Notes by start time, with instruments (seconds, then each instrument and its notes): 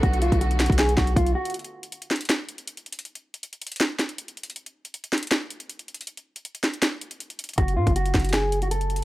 Already playing: string section D3 A3 B3 F#4
0.03 808-style bass B1, clean electric guitar F#4, kick, closed hi-hat
0.13 closed hi-hat
0.22 clean electric guitar F4, closed hi-hat
0.32 808-style bass B1, kick, closed hi-hat
0.41 clean electric guitar F#4, closed hi-hat
0.51 closed hi-hat
0.60 snare, closed hi-hat, open hi-hat
0.66 808-style bass B1, kick, closed hi-hat
0.72 closed hi-hat
0.78 clean electric guitar G#4, snare, closed hi-hat
0.89 closed hi-hat
0.97 808-style bass B1, clean electric guitar F#4, kick, snare, closed hi-hat
1.07 closed hi-hat
1.16 808-style bass B1, clean electric guitar F4, kick, closed hi-hat
1.27 closed hi-hat
1.35 clean electric guitar F#4
1.45 closed hi-hat
1.50 closed hi-hat
1.54 closed hi-hat
1.59 closed hi-hat
1.64 closed hi-hat
1.83 closed hi-hat
1.92 closed hi-hat
2.02 closed hi-hat
2.11 snare, closed hi-hat
2.16 closed hi-hat
2.21 closed hi-hat
2.25 closed hi-hat
2.29 snare, closed hi-hat
2.49 closed hi-hat
2.58 closed hi-hat
2.67 closed hi-hat
2.77 closed hi-hat
2.86 closed hi-hat
2.92 closed hi-hat
2.99 closed hi-hat
3.05 closed hi-hat
3.15 closed hi-hat
3.34 closed hi-hat
3.43 closed hi-hat
3.53 closed hi-hat
3.62 closed hi-hat, open hi-hat
3.67 closed hi-hat
3.72 closed hi-hat
3.76 closed hi-hat
3.80 snare, closed hi-hat
3.99 snare, closed hi-hat
4.09 closed hi-hat
4.18 closed hi-hat
4.28 closed hi-hat
4.37 closed hi-hat
4.43 closed hi-hat
4.50 closed hi-hat
4.56 closed hi-hat
4.66 closed hi-hat
4.85 closed hi-hat
4.94 closed hi-hat
5.04 closed hi-hat
5.13 snare, closed hi-hat
5.18 closed hi-hat
5.23 closed hi-hat
5.27 closed hi-hat
5.31 snare, closed hi-hat
5.50 closed hi-hat
5.60 closed hi-hat
5.70 closed hi-hat
5.79 closed hi-hat
5.88 closed hi-hat
5.94 closed hi-hat
6.01 closed hi-hat
6.07 closed hi-hat
6.17 closed hi-hat
6.36 closed hi-hat
6.45 closed hi-hat
6.55 closed hi-hat
6.64 snare, closed hi-hat
6.74 closed hi-hat
6.82 snare, closed hi-hat
7.01 closed hi-hat
7.11 closed hi-hat
7.20 closed hi-hat
7.30 closed hi-hat
7.39 closed hi-hat
7.44 closed hi-hat
7.49 closed hi-hat
7.53 closed hi-hat
7.58 808-style bass F#1, clean electric guitar F#4, kick, closed hi-hat
7.68 closed hi-hat
7.77 808-style bass A2, clean electric guitar F4
7.87 808-style bass F#1, kick, closed hi-hat
7.96 clean electric guitar F#4, closed hi-hat
8.06 closed hi-hat
8.14 808-style bass F#1, kick, snare, closed hi-hat
8.19 closed hi-hat
8.24 closed hi-hat
8.29 closed hi-hat
8.33 clean electric guitar G#4, snare, closed hi-hat
8.52 closed hi-hat
8.62 clean electric guitar F#4, closed hi-hat
8.71 clean electric guitar A4, closed hi-hat
8.81 closed hi-hat
8.90 closed hi-hat
8.96 closed hi-hat